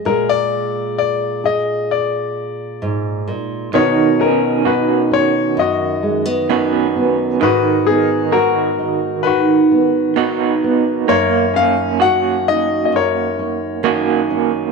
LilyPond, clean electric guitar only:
\new Staff \with { instrumentName = "Clean electric guitar" } { \time 4/4 \key ces \lydian \tempo 4 = 65 r1 | dis8 cis'8 fis'2 <b cis' fis'>4 | ees8 ees'8 ges'2 <ces' ees' ges'>4 | bes8 des'8 ges'2 <bes des' ges'>4 | }